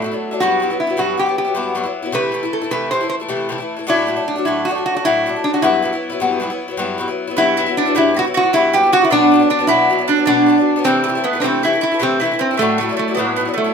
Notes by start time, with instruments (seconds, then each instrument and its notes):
Already playing: resonator guitar played with a steel bar A3
0.02 bouzouki A2 F#3 E4
0.12 bouzouki F#3 D4 E4
0.31 bouzouki F#3 D4 E4
0.40 bouzouki G2 F#3 B3 E4, resonator guitar played with a steel bar F#4
0.60 bouzouki G2 F#3 B3 E4
0.70 bouzouki F#3 B3 E4
0.80 resonator guitar played with a steel bar E4
0.87 bouzouki F#3 B3 E4
0.97 bouzouki G2 F#3 B3 E4, resonator guitar played with a steel bar F#4
1.18 bouzouki G2 F#3 B3 E4, resonator guitar played with a steel bar G4
1.26 bouzouki F#3 B3 E4
1.38 resonator guitar played with a steel bar G4
1.45 bouzouki F#3 B3 E4
1.55 bouzouki G2 F#3 B3 E4
1.75 bouzouki G2 F#3 B3 E4
1.84 bouzouki F#3 B3 E4
2.03 bouzouki F#3 B3 E4
2.12 bouzouki C3 E3 A3 E4, resonator guitar played with a steel bar B4
2.32 bouzouki C3 E3 A3 E4
2.43 bouzouki E3 A3 E4
2.53 resonator guitar played with a steel bar A4
2.62 bouzouki E3 A3 E4
2.71 bouzouki C3 E3 A3 E4, resonator guitar played with a steel bar B4
2.91 bouzouki C3 E3 A3 E4, resonator guitar played with a steel bar C5
3.01 bouzouki E3 A3 E4
3.10 resonator guitar played with a steel bar C5
3.20 bouzouki E3 A3 E4
3.29 bouzouki C3 E3 A3 E4
3.49 bouzouki C3 E3 A3 E4
3.58 bouzouki E3 A3 E4
3.77 bouzouki E3 A3 E4
3.87 bouzouki A2 F#3 A3 D4, resonator guitar played with a steel bar E4
4.07 bouzouki A2 F#3 A3 D4
4.16 bouzouki F#3 A3 D4
4.28 resonator guitar played with a steel bar D4
4.36 bouzouki F#3 A3 D4
4.45 bouzouki A2 F#3 A3 D4, resonator guitar played with a steel bar E4
4.65 bouzouki A2 F#3, resonator guitar played with a steel bar F#4
4.70 bouzouki A3 D4
4.75 bouzouki F#3 A3 D4
4.86 resonator guitar played with a steel bar F#4
4.95 bouzouki F#3 A3 D4, resonator guitar played with a steel bar F#4
5.05 bouzouki A2 F#3 A3 D4, resonator guitar played with a steel bar E4
5.26 bouzouki A2 F#3 A3 D4
5.36 bouzouki F#3 A3 D4
5.44 resonator guitar played with a steel bar D4
5.53 bouzouki F#3 A3 D4, resonator guitar played with a steel bar F#4
5.62 bouzouki G2 F#3 B3 E4, resonator guitar played with a steel bar E4
5.82 bouzouki G2 F#3 B3 E4
5.93 bouzouki F#3 B3 E4
6.10 bouzouki F#3 B3 E4
6.20 bouzouki G2 F#3 B3 E4
6.40 bouzouki G2 F#3 B3 E4
6.50 bouzouki F#3 B3 E4
6.68 bouzouki F#3 B3 E4
6.77 bouzouki G2 F#3 B3 E4
6.98 bouzouki G2 F#3 B3 E4
7.08 bouzouki F#3 B3 E4
7.28 bouzouki F#3 B3 E4
7.37 bouzouki G2 F#3 B3 E4, mandolin E4, resonator guitar played with a steel bar E4
7.57 bouzouki G2 F#3 B3 E4, mandolin E4
7.66 bouzouki F#3 B3 E4
7.77 resonator guitar played with a steel bar D4, mandolin D4
7.86 bouzouki F#3 B3 E4
7.95 bouzouki G2 F#3 B3 E4, mandolin E4, resonator guitar played with a steel bar E4
8.14 bouzouki G2 F#3 B3 E4, mandolin F#4
8.19 resonator guitar played with a steel bar F#4
8.24 bouzouki F#3 B3 E4
8.34 mandolin F#4, resonator guitar played with a steel bar F#4
8.43 bouzouki F#3 B3 E4
8.53 bouzouki G2 F#3 B3 E4, mandolin E4, resonator guitar played with a steel bar E4
8.73 bouzouki G2 F#3 B3 E4, mandolin G4, resonator guitar played with a steel bar G4
8.83 bouzouki F#3 B3 E4
8.92 mandolin F#4, resonator guitar played with a steel bar F#4
9.01 bouzouki F#3 B3 E4, resonator guitar played with a steel bar E4
9.10 bouzouki B2 F#3 B3 D4, mandolin D4, resonator guitar played with a steel bar D4
9.32 bouzouki B2 F#3 B3 D4
9.39 bouzouki F#3 B3 D4
9.50 mandolin D4, resonator guitar played with a steel bar D4
9.59 bouzouki F#3 B3 D4
9.67 bouzouki B2 F#3 B3 D4, resonator guitar played with a steel bar E4, mandolin E4
9.90 bouzouki B2 F#3 B3 D4
9.99 bouzouki F#3 B3 D4
10.08 mandolin D4, resonator guitar played with a steel bar D4
10.16 bouzouki F#3 B3 D4
10.26 bouzouki B2 F#3 B3 D4, mandolin D4, resonator guitar played with a steel bar D4
10.46 bouzouki B2 F#3 B3 D4
10.58 bouzouki F#3 B3 D4
10.76 bouzouki F#3 B3 D4
10.84 bouzouki C3 E3 A3 E4, mandolin C4, resonator guitar played with a steel bar C4
11.04 bouzouki C3, mandolin C4
11.08 bouzouki E3 A3 E4
11.15 bouzouki E3 A3 E4
11.24 mandolin B3, resonator guitar played with a steel bar B3
11.33 bouzouki E3 A3 E4
11.40 bouzouki C3, mandolin C4, resonator guitar played with a steel bar C4 D4
11.44 bouzouki E3 A3 E4
11.63 bouzouki C3 E3 A3, mandolin E4, resonator guitar played with a steel bar E4
11.68 bouzouki E4
11.73 bouzouki E3 A3 E4
11.81 mandolin E4, resonator guitar played with a steel bar E4
11.92 bouzouki E3 A3 E4
11.99 bouzouki C3 E3 A3 E4, mandolin C4, resonator guitar played with a steel bar C4
12.20 bouzouki C3 E3, mandolin E4, resonator guitar played with a steel bar E4
12.24 bouzouki A3 E4
12.32 bouzouki E3 A3 E4
12.39 mandolin C4, resonator guitar played with a steel bar C4
12.51 bouzouki E3 A3 E4
12.57 bouzouki A2 F#3, mandolin A3, resonator guitar played with a steel bar A3
12.62 bouzouki D4 E4
12.78 bouzouki A2 F#3, mandolin A3, resonator guitar played with a steel bar A3
12.82 bouzouki D4 E4
12.89 bouzouki F#3 D4 E4
12.97 mandolin A3, resonator guitar played with a steel bar A3
13.08 bouzouki F#3 D4 E4
13.15 bouzouki A2, mandolin B3, resonator guitar played with a steel bar B3
13.19 bouzouki F#3 D4 E4
13.36 bouzouki A2 F#3, mandolin B3
13.41 bouzouki E4
13.45 bouzouki F#3 D4 E4
13.54 mandolin A3, resonator guitar played with a steel bar A3
13.64 bouzouki F#3 D4 E4